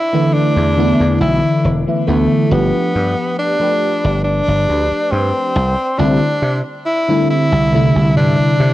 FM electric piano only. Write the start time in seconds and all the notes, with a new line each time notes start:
0.13 D3 E3 A3 B3 E4
0.76 D3 E3 A3 B3 E4
1.86 D3 E3 A3 B3 E4
2.07 D3 E3 A3 B3 E4
2.49 F3 A3 B3 D4 G4
3.59 F3 A3 D4 G4 B4
5.98 D3 G3 A3 C4 E4
7.08 D3 G3 A3 C4 E4
7.72 C3 D3 G3 A3 E4